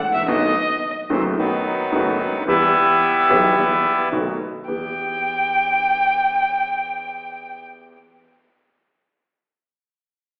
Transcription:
Already playing: violin F#5
0.01 double bass A1
0.08 grand piano G#1
0.14 grand piano A1, violin E5
0.22 grand piano A#1
0.28 double bass B1, grand piano B1 B2 D#3 A3 B3 F#4, violin D#5
1.10 double bass F#1, grand piano F#1 F#2 D#3 A3 B3 F#4, bandoneon C4
1.37 double bass B1, grand piano B1 B2 D#3 A3 B3 F#4, bandoneon D#3 F#3 B3
1.92 double bass F#1, grand piano F#1 F#2 D#3 A3 B3 F#4
2.20 double bass D2
2.27 grand piano C#2
2.34 grand piano D2
2.41 grand piano D#2
2.47 double bass E2, grand piano E2 E3 G3 B3 G4, bandoneon G3 B3 E4
3.30 double bass B1, grand piano B1 B2 E3 G3 B3 G4
3.57 grand piano E2 E3 G3 B3 G4, double bass E2
4.12 grand piano B1 B2 D#3 A3 B3 F#4, double bass B1
4.68 grand piano E2 B3 E4 G4, double bass E2, violin G5

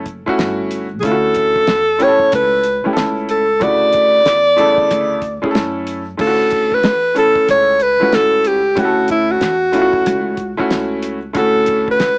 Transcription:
Already playing: upright bass F#1
0.06 kick, closed hi-hat
0.26 upright piano A3 C#4 E4 F#4, muted upright bass stroke, kick
0.39 upright bass G1, snare, closed hi-hat
0.71 closed hi-hat
1.00 upright bass D2, upright piano A3 C#4 E4, alto saxophone G#4, kick, closed hi-hat
1.05 upright piano F4, alto saxophone A4
1.11 upright piano F#4
1.34 kick, closed hi-hat
1.56 kick
1.67 upright bass E2, snare, closed hi-hat
1.99 upright piano A3 C#4 E4 G4, closed hi-hat
2.03 alto saxophone C#5
2.08 upright piano A4
2.19 kick
2.32 upright bass C#2, alto saxophone B4, closed hi-hat
2.64 closed hi-hat
2.84 upright piano A3 C#4 E4 G4, muted upright bass stroke
2.93 upright piano A4, snare, closed hi-hat
2.97 upright bass C#2
3.29 alto saxophone A4, closed hi-hat
3.60 upright bass D2, upright piano C#3 A3 E4 F#4, alto saxophone D5, kick, closed hi-hat
3.92 kick, closed hi-hat
4.26 upright bass E2, snare, closed hi-hat
4.56 upright piano C#3 A3 E4 A4, closed hi-hat
4.77 kick
4.90 upright bass D2, closed hi-hat
5.22 kick, closed hi-hat
5.42 upright piano A3 C#4 E4 G#4, muted upright bass stroke, kick
5.51 upright piano A4
5.55 upright bass F#2, snare, closed hi-hat
5.87 closed hi-hat
6.17 upright bass D2, upright piano A3 C#4 E4 F4, alto saxophone A4, kick, crash
6.27 upright piano F#4
6.50 kick, closed hi-hat
6.72 alto saxophone B4, kick
6.83 upright bass E2, snare, closed hi-hat
7.15 upright piano A3 C#4 E4 A4, alto saxophone A4, closed hi-hat
7.36 kick
7.48 upright bass C#2, alto saxophone C#5, closed hi-hat
7.80 alto saxophone B4, closed hi-hat
8.00 upright piano A3 C#4 E4 F#4, muted upright bass stroke
8.13 upright bass C#2, alto saxophone A4, snare, closed hi-hat
8.45 alto saxophone G4, closed hi-hat
8.76 upright bass D2, upright piano A3 C#4 E4 G4, alto saxophone F#4, kick, closed hi-hat
8.85 upright piano A4
9.08 alto saxophone E4, kick, closed hi-hat
9.31 alto saxophone F#4
9.41 upright bass E2, snare, closed hi-hat
9.72 upright piano A3 C#4 E4 F4, closed hi-hat
9.82 upright piano F#4
9.93 kick
10.06 upright bass C#2, closed hi-hat
10.37 kick, closed hi-hat
10.57 upright piano A3 C#4 E4 F#4, muted upright bass stroke, kick
10.70 upright bass C#2, snare, closed hi-hat
11.03 closed hi-hat
11.33 upright bass D2, upright piano A3 C#4 E4 F#4, kick, closed hi-hat
11.38 alto saxophone A4
11.66 kick, closed hi-hat
11.88 alto saxophone B4, kick
12.00 upright bass C#2, snare, closed hi-hat

